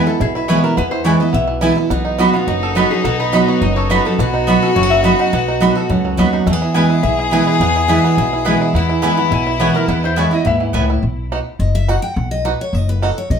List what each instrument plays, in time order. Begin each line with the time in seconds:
Already playing: steel-string acoustic guitar E2, five-string banjo E3 B3 E4
0.07 steel-string acoustic guitar B3 E4, five-string banjo E4, resonator guitar played with a steel bar A4
0.20 upright bass B1, steel-string acoustic guitar B2, five-string banjo E4, resonator guitar played with a steel bar G#4
0.35 five-string banjo E4, resonator guitar played with a steel bar B4
0.48 steel-string acoustic guitar E3 G#3 B3 E4, mandolin B3 E4 B4 G#5, five-string banjo E4, resonator guitar played with a steel bar C#5
0.64 steel-string acoustic guitar B3 E4, five-string banjo E4, resonator guitar played with a steel bar A#4
0.77 upright bass E2, five-string banjo B3, resonator guitar played with a steel bar B4
0.91 five-string banjo E4, resonator guitar played with a steel bar C5
1.04 steel-string acoustic guitar E3 G#3 B3 E4, mandolin B3 E4 B4 G#5, five-string banjo E4, resonator guitar played with a steel bar C#5
1.20 steel-string acoustic guitar B3 E4, five-string banjo E4, resonator guitar played with a steel bar D#5
1.33 upright bass B1, steel-string acoustic guitar B2, five-string banjo B3, resonator guitar played with a steel bar E5
1.48 five-string banjo E3
1.61 steel-string acoustic guitar E3 G#3 B3 E4, mandolin B3 E4 B4 G#5, five-string banjo E4
1.75 steel-string acoustic guitar B3 E4, five-string banjo E4
1.90 upright bass B1, steel-string acoustic guitar B2, five-string banjo B3, fiddle D#4
2.05 five-string banjo D#4
2.18 steel-string acoustic guitar F#3 B3 D#4 F#4, mandolin B3 F#4 D#5 B5, five-string banjo F#4
2.34 five-string banjo B3, steel-string acoustic guitar D#4 F#4, resonator guitar played with a steel bar F4
2.47 upright bass F#1, steel-string acoustic guitar F#2, five-string banjo D#4, resonator guitar played with a steel bar F#4
2.63 five-string banjo A4
2.75 steel-string acoustic guitar F#3 B3 D#4 F#4, mandolin B3 F#4 D#5 B5, five-string banjo F#4
2.91 five-string banjo B3, steel-string acoustic guitar D#4 F#4, resonator guitar played with a steel bar G#4
3.04 upright bass B1, steel-string acoustic guitar B2, five-string banjo B3, resonator guitar played with a steel bar A4
3.20 five-string banjo D#4, resonator guitar played with a steel bar B4
3.32 steel-string acoustic guitar F#3 B3 D#4 F#4, mandolin B3 F#4 D#5 B5, five-string banjo F#4, resonator guitar played with a steel bar D#5
3.48 five-string banjo B3, resonator guitar played with a steel bar C#5
3.61 upright bass F#1, steel-string acoustic guitar F#2, five-string banjo D#4, resonator guitar played with a steel bar D#5
3.76 five-string banjo A4, resonator guitar played with a steel bar C#5
3.90 steel-string acoustic guitar F#3 B3 D#4 F#4, mandolin B3 F#4 D#5 B5, five-string banjo F#4, resonator guitar played with a steel bar B4
4.05 five-string banjo B3, steel-string acoustic guitar D#4 F#4, resonator guitar played with a steel bar A4
4.19 upright bass B1, steel-string acoustic guitar B2, five-string banjo B3, fiddle F#4, resonator guitar played with a steel bar B4
4.34 five-string banjo D#4, resonator guitar played with a steel bar D#4
4.47 steel-string acoustic guitar F#3 B3 D#4 F#4, mandolin B3 F#4 D#5 B5, five-string banjo F#4, resonator guitar played with a steel bar F#4
4.62 steel-string acoustic guitar D#4 F#4, five-string banjo A4, resonator guitar played with a steel bar B4
4.75 upright bass F#1, steel-string acoustic guitar F#2, five-string banjo A3, resonator guitar played with a steel bar C#5
4.83 five-string banjo B3
4.90 five-string banjo F#3, resonator guitar played with a steel bar E5
5.03 steel-string acoustic guitar F#3 B3 D#4 F#4, mandolin B3 F#4 D#5 B5, five-string banjo F#4, resonator guitar played with a steel bar D#5
5.19 five-string banjo D#4, resonator guitar played with a steel bar F#5
5.33 upright bass B1, steel-string acoustic guitar B2, five-string banjo B3
5.48 five-string banjo D#4
5.60 steel-string acoustic guitar F#3 B3 D#4 F#4, mandolin B3 F#4 D#5 B5, five-string banjo F#4
5.75 steel-string acoustic guitar D#4 F#4, five-string banjo A4
5.89 upright bass C#2, steel-string acoustic guitar F#2, five-string banjo B3
6.05 five-string banjo F#3
6.17 upright bass D#2, steel-string acoustic guitar F#3 B3 D#4 F#4, mandolin B3 F#4 D#5 B5, five-string banjo F#4
6.33 five-string banjo D#4
6.46 upright bass E2, steel-string acoustic guitar E2, five-string banjo A3, fiddle G#4
6.53 five-string banjo B3
6.62 five-string banjo E4
6.74 steel-string acoustic guitar E3 G#3 B3 E4, mandolin B3 E4 B4 G#5, five-string banjo B3, resonator guitar played with a steel bar G#5
6.90 five-string banjo E4
7.03 upright bass B1, steel-string acoustic guitar B2, five-string banjo E4, resonator guitar played with a steel bar E5
7.19 five-string banjo E4
7.31 steel-string acoustic guitar E3 G#3 B3 E4, mandolin B3 E4 B4 G#5, five-string banjo E4
7.47 five-string banjo E4
7.60 upright bass E2, steel-string acoustic guitar E2, five-string banjo B3
7.76 five-string banjo E4
7.88 steel-string acoustic guitar E3 G#3 B3 E4, mandolin B3 E4 B4 G#5, five-string banjo E4
8.04 five-string banjo B3
8.18 upright bass B1, steel-string acoustic guitar B2, five-string banjo E4
8.33 five-string banjo E4
8.45 steel-string acoustic guitar E3 G#3 B3 E4, mandolin B3 E4 B4 G#5, five-string banjo B3
8.62 five-string banjo E4
8.74 upright bass E2, steel-string acoustic guitar E2, five-string banjo B3, fiddle E4
8.89 five-string banjo E4
9.02 steel-string acoustic guitar E3 G#3 B3 E4, mandolin B3 E4 B4 G#5, five-string banjo E4, resonator guitar played with a steel bar B5
9.17 five-string banjo B3, steel-string acoustic guitar B3 E4
9.31 upright bass B1, steel-string acoustic guitar B2, five-string banjo E4, resonator guitar played with a steel bar G#5
9.47 five-string banjo E4
9.59 steel-string acoustic guitar E3 G#3 B3 E4, mandolin B3 E4 B4 G#5, five-string banjo B3, resonator guitar played with a steel bar C#5
9.75 steel-string acoustic guitar B3 E4, five-string banjo E4, resonator guitar played with a steel bar A#4
9.88 upright bass E2, steel-string acoustic guitar E2, five-string banjo B3, resonator guitar played with a steel bar B4
10.04 five-string banjo E4, resonator guitar played with a steel bar C5
10.16 steel-string acoustic guitar E3 G#3 B3 E4, mandolin B3 E4 B4 G#5, five-string banjo E4, resonator guitar played with a steel bar C#5
10.31 steel-string acoustic guitar B3 E4, five-string banjo E4, resonator guitar played with a steel bar D#5
10.45 upright bass D#2, steel-string acoustic guitar G#2, five-string banjo B3, resonator guitar played with a steel bar E5
10.60 five-string banjo E3
10.73 upright bass C#2, steel-string acoustic guitar A2, mandolin B3 E4 B4 G#5, five-string banjo E4
10.90 five-string banjo E4
11.03 upright bass B1
11.32 five-string banjo B3 D#4 F#4
11.59 upright bass F#1, steel-string acoustic guitar D#5
11.75 steel-string acoustic guitar E5
11.88 five-string banjo B3 D#4 F#4, steel-string acoustic guitar F#5
12.02 steel-string acoustic guitar G5
12.15 upright bass B1, steel-string acoustic guitar F#5
12.31 steel-string acoustic guitar D#5
12.45 five-string banjo B3 D#4 F#4, steel-string acoustic guitar B4
12.61 steel-string acoustic guitar C#5
12.73 upright bass F#1, steel-string acoustic guitar D#5
12.89 steel-string acoustic guitar B4
13.02 five-string banjo B3 D#4 F#4, steel-string acoustic guitar A4
13.18 steel-string acoustic guitar C#5
13.30 upright bass B1, steel-string acoustic guitar D#5